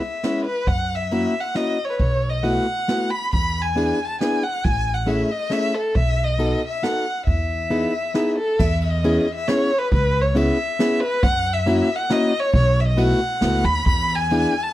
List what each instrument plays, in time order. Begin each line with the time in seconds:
Already playing: violin E5
0.23 steel-string acoustic guitar G#3 B3 C#4 E4, snare, ride
0.45 violin B4
0.67 upright bass F#2, violin F#5, kick, ride
0.95 violin E5
1.11 steel-string acoustic guitar A#3 C#4 E4 F#4, ride
1.40 violin F#5
1.55 steel-string acoustic guitar A#3 C#4 E4 F#4, violin D#5, snare, ride
1.85 violin C#5
1.90 violin B4 C#5
1.99 upright bass B1, violin C#5, kick, ride
2.29 violin D#5
2.43 steel-string acoustic guitar A3 B3 E4 F#4, violin F#5, ride
2.88 steel-string acoustic guitar A3 B3 E4 F#4, snare, ride
3.10 violin B5
3.33 upright bass E2, violin B5, kick, ride
3.62 violin G#5
3.76 steel-string acoustic guitar B3 D4 E4 G#4, ride
4.05 violin A5
4.21 steel-string acoustic guitar B3 D4 E4 G#4, violin G#5, snare, ride
4.43 violin F#5
4.64 upright bass A1, violin G#5, kick, ride
4.94 violin F#5
5.06 steel-string acoustic guitar A3 C#4 E4 G#4, violin E5, ride
5.31 violin D#5
5.50 steel-string acoustic guitar A3 C#4 E4 G#4, violin E5, snare, ride
5.75 violin A4
5.95 upright bass B1, violin E5, kick, ride
6.24 violin D#5
6.39 steel-string acoustic guitar B3 D#4 F#4 A4, ride
6.67 violin E5
6.82 steel-string acoustic guitar B3 D#4 F#4 A4, violin F#5, snare, ride
7.26 upright bass E2, violin E5, kick, ride
7.70 steel-string acoustic guitar B3 D#4 E4 G#4, ride
8.14 steel-string acoustic guitar B3 D#4 E4 G#4, snare, ride
8.38 violin A4
8.59 upright bass E2, violin E5, kick, crash
8.81 violin E5, ride
8.90 violin D#5
9.04 steel-string acoustic guitar B3 C#4 E4 G#4, ride
9.34 violin E5
9.47 steel-string acoustic guitar B3 C#4 E4 G#4, violin C#5, snare, ride
9.78 violin B4
9.92 upright bass C#2, violin B4, kick, ride
10.21 violin C#5
10.35 steel-string acoustic guitar B3 C#4 E4 G#4, violin E5, ride
10.79 steel-string acoustic guitar B3 C#4 E4 G#4, snare, ride
11.00 violin B4
11.23 upright bass F#2, violin F#5, kick, ride
11.45 ride
11.53 violin E5
11.66 steel-string acoustic guitar A#3 C#4 E4 F#4, ride
11.96 violin F#5
12.10 steel-string acoustic guitar A#3 C#4 E4 F#4, violin D#5, snare, ride
12.39 violin C#5
12.54 upright bass B1, violin C#5, kick, ride
12.80 violin E5
12.85 violin D#5
12.97 steel-string acoustic guitar A3 B3 E4 F#4, violin F#5, ride
13.41 upright bass C#2, steel-string acoustic guitar A3 B3 E4 F#4, snare, ride
13.64 upright bass D#2, violin B5
13.86 upright bass E2, violin B5, kick, ride
14.08 ride
14.15 violin G#5
14.30 steel-string acoustic guitar B3 D4 E4 G#4, ride
14.62 violin A5